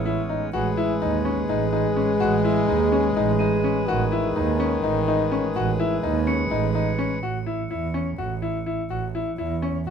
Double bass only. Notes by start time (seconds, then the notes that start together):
Already playing: A1
0.53 A1
1.02 D#2
1.49 A1
2.21 A1
2.69 D#2
3.16 A1
3.89 A1
4.36 D#2
4.84 A1
5.56 A1
6.03 D#2
6.51 A1
7.22 A1
7.71 E2
8.18 A1
8.91 A1
9.38 E2
9.87 A1